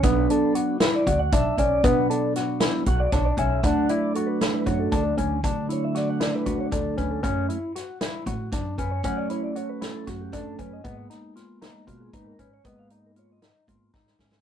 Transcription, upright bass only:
\new Staff \with { instrumentName = "Upright bass" } { \clef bass \time 7/8 \key b \minor \tempo 4 = 116 b,,8 r4. d,8 b,,8 b,,8 | b,2 b,,8 b,,8 b,,8 | d,8 r4. fis,8 d,8 d,8 | d2 d,8 d,8 d,8 |
fis,8 r4. a,8 fis,8 fis,8 | fis2 fis,8 fis,8 fis,8 | gis,8 r4. b,8 gis,8 gis,8 | gis,2 gis,8 gis,8 gis,8 | }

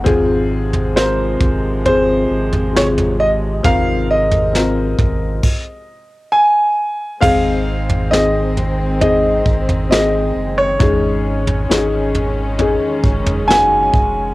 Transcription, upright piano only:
<<
  \new Staff \with { instrumentName = "Upright piano" } { \time 4/4 \key aes \mixolydian \tempo 4 = 67 << { <des'' ges''>16 r2. r8. | r1 | r1 | r1 | } \\ { <c' f' aes'>4 <c' f' bes'>4 <c' f' aes'>4 <c f' aes'>4 | <c' f' bes'>4 <c' f' bes'>4 r2 | <c' ees' aes'>4 <c' ees' aes'>4 <c' ees' aes'>4 <c' ees' aes'>4 | <des' ees' aes'>4 <des' ees' aes'>4 <des' ees' aes'>4 <des' ees' ges'>4 | } >> }
  \new Staff \with { instrumentName = "Upright piano" } { \clef bass \time 4/4 \key aes \mixolydian aes,4. r2 r8 | aes,4. r2 r8 | aes,4. r2 r8 | aes,4. r2 r8 | }
>>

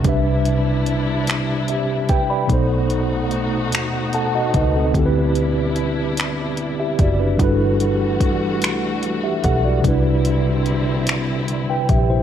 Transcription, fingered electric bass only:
\new Staff \with { instrumentName = "Fingered electric bass" } { \clef bass \time 6/8 \key c \lydian \tempo 4. = 49 c,2~ c,8 r8 | b,,4. dis,4 cis,8 | d,2~ d,8 fis,,8 | g,,4. b,,4 b,,8 |
c,2~ c,8 bes,,8 | }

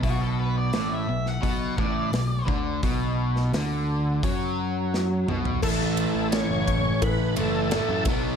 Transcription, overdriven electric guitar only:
\new Staff \with { instrumentName = "Overdriven electric guitar" } { \clef bass \time 4/4 \key a \mixolydian \tempo 4 = 86 b,4 a,8 b,8 b,8 a,8 b,8 d8 | b,4 d4 fis4. b,8 | <a, e a>2~ <a, e a>8 <a, e a>8 <a, e a>8 <b, fis b>8 | }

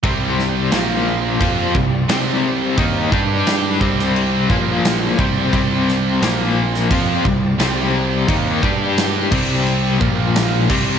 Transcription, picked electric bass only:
\new Staff \with { instrumentName = "Picked electric bass" } { \clef bass \time 4/4 \key c \minor \tempo 4 = 87 c,4 bes,,4 f,8 c,8 c,4 | ees,8 g,4 c,4 bes,,4 c,8 | c,4 bes,,4 f,8 c,8 c,4 | ees,8 g,4 c,4 bes,,4 c,8 | }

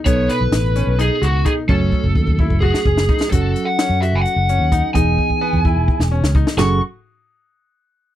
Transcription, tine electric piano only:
\new Staff \with { instrumentName = "Tine electric piano" } { \time 7/8 \key fis \dorian \tempo 4 = 129 <b, b dis' a'>2.~ <b, b dis' a'>8 | <fis a cis' fis'>2.~ <fis a cis' fis'>8 | <fis cis' fis' a'>2.~ <fis cis' fis' a'>8 | <e b dis' gis'>2.~ <e b dis' gis'>8 |
<fis cis' gis' a'>8 r2. | }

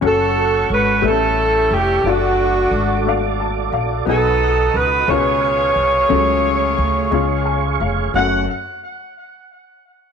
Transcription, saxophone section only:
\new Staff \with { instrumentName = "Saxophone section" } { \time 6/8 \key fis \minor \tempo 4. = 59 << { a'4 b'8 a'4 g'8 | fis'2 r4 | a'4 b'8 cis''4.~ | cis''2~ cis''8 r8 |
fis''8 r2 r8 | } \\ { <cis' fis'>4. <cis' e'>4. | <a d'>2 r4 | <dis' fis'>4. <eis' gis'>4.~ | <eis' gis'>2~ <eis' gis'>8 r8 |
r2. | } >> }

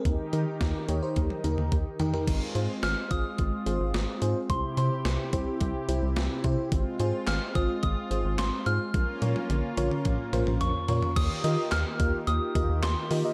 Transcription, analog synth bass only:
\new Staff \with { instrumentName = "Analog synth bass" } { \clef bass \time 4/4 \key aes \major \tempo 4 = 108 ees,16 r16 ees16 r16 ees,16 r16 ees,16 r16 ees,16 r16 ees,16 ees,16 ees,16 r16 ees16 r16 | aes,,16 r16 aes,16 r16 aes,,16 r16 aes,,16 r16 aes,,16 r16 aes,,16 aes,,16 aes,,16 r16 aes,16 r16 | c,16 r16 c16 r16 c,16 r16 c,16 r16 c,16 r16 c,16 c,16 c,16 r16 c16 r16 | aes,,16 r16 aes,16 r16 aes,,16 r16 aes,,16 r16 aes,,16 r16 aes,,16 aes,,16 aes,,16 r16 aes,16 r16 |
bes,,16 r16 bes,16 r16 bes,,16 r16 bes,,16 r16 bes,,16 r16 bes,,16 bes,,16 bes,,16 r16 bes,16 r16 | ees,16 r16 ees16 r16 ees,16 r16 ees,16 r16 ees,16 r16 ees,16 ees,16 ees,16 r16 ees16 r16 | }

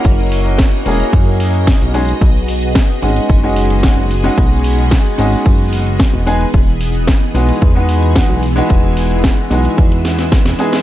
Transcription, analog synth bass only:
\new Staff \with { instrumentName = "Analog synth bass" } { \clef bass \time 4/4 \key e \lydian \tempo 4 = 111 fis,,4 r8 e,,16 r16 fis,4 r16 b,,8 r16 | b,,4 r8 gis,,16 r16 fis,,4 r16 fis,,8 r16 | b,,4 r8 gis,,16 r16 fis,,4 r16 e,,8 r16 | e,,4 r8 b,,16 r16 e,4 r16 b,,8 r16 |
e,,4 r8 b,,16 r16 e,4 r16 e,,16 r8 | }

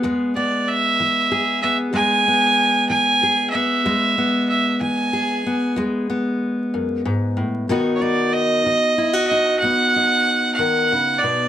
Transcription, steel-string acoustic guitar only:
\new Staff \with { instrumentName = "Steel-string acoustic guitar" } { \clef bass \time 12/8 \key e \major \tempo 4. = 62 << { <gis b>8 b4. gis'8 b8 gis8 b4. gis'8 b8 | gis8 b4. gis'8 b8 gis8 b2~ b8 | <dis b dis' fis'>8 dis'4. e'16 fis'16 dis'8 b8 dis'2~ dis'8 | } \\ { e,4 r8 e4 r8 e,4 r8 e4 r8 | e,4 r8 e4 r8 e,4 r8 fis,8 gis,8 a,8 | b,4 r8 dis4 r8 b,4 r8 dis8 cis8 b,8 | } >> }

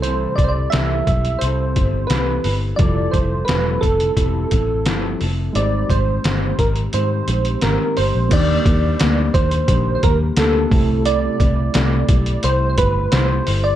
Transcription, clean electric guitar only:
\new Staff \with { instrumentName = "Clean electric guitar" } { \time 4/4 \key c \major \tempo 4 = 87 <c e g c' e' a'>8 <g c' e' a'>8 <c e g c' e' a'>8 <g c' e' a'>8 <g c' e' a'>8 <g c' e' a'>8 <c e g c' e' a'>8 <g c' e' a'>8 | <f g c' e' a'>8 <c' e' a'>8 <f g c' e' a'>8 <c' e'>8 <g c' e' a'>8 <c' e' a'>8 <f g c' e' a'>8 <c' e' a'>8 | <aes, ees g c' ees'>8 <g c' ees'>8 <ees g c' ees'>8 <g c'>8 <ees g c' ees'>8 <g c' ees'>8 <aes, ees g c' ees'>8 <g c' ees'>8 | <ees g bes d'>8 <g bes d'>8 <g bes d'>8 <g bes d'>8 <ees g bes d'>8 <g bes d'>8 <g bes d'>8 <g a e'>8 |
<c g a e'>8 <g a e'>8 <c g a e'>8 <g a e'>8 <c g a e'>8 <g a e'>8 <c g a e'>8 <g a e'>8 | }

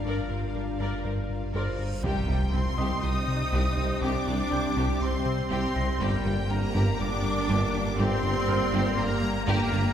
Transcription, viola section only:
\new Staff \with { instrumentName = "Viola section" } { \time 4/4 \key c \minor \tempo 4 = 121 bes'8 bes'8 bes'8 bes'8 bes'8 r8 bes'8 r8 | g4 c'4 ees'2 | d'2 c'4 c'4 | g4 bes4 d'2 |
c'2 bes4 bes4 | }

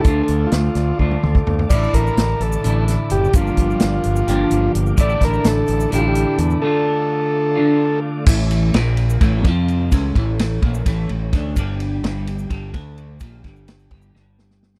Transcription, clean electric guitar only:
\new Staff \with { instrumentName = "Clean electric guitar" } { \clef bass \time 7/8 \tempo 4 = 128 <d a d' f'>2 <d a d' f'>4. | <a, d a d' e'>2 <a, d a d' e'>4. | <g, d f bes d' g'>2 <g, d f bes d' g'>4. | <a, d a d' e'>2 <a, d a d' e'>4. |
<d a d' f'>2 <d a d' f'>4. | <a, e a>4 <bes, f bes>4 <a, e a>8 <f c' f'>4 | <cis gis cis'>8 <a, e a>4 <bes, f bes>8 <a, e a>8 <a, e>8 <d a d'>8 | <g, d g>4 <g, d g>4 <g, d g>8 <d a d'>4 |
<bes, f bes>8 <g, d g>4 <g, d g>8 <g, d g>4. | }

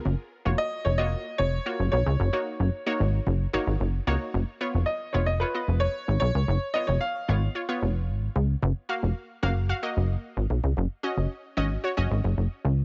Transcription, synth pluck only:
\new Staff \with { instrumentName = "Synth pluck" } { \time 4/4 \key cis \mixolydian \tempo 4 = 112 r8. <ais eis' fis' cis''>8 r8 <ais eis' fis' cis''>8 r8. <ais eis' fis' cis''>8 r8 | r16 <ais dis' fis' cis''>8 r8 <ais dis' fis' cis''>8 r8. <ais dis' fis' cis''>8 r8 <ais dis' fis' cis''>8 | r8 <b eis' cis''>8 r8 <b eis' cis''>16 r16 <eis' cis''>16 <b eis' dis''>4 r8. | r8 <b eis' cis''>8 r8 <b eis' cis''>16 r16 <eis' cis''>16 <b eis' cis''>4 r8. |
r8 <ais fis' eis''>8 r8 <ais fis' eis''>16 r16 <fis' eis''>16 <ais fis' dis''>4 r8. | r8 <cis' fis' dis''>8 r8 <cis' fis' dis''>16 r16 <fis' cis''>16 <cis' fis' dis''>4 r8. | }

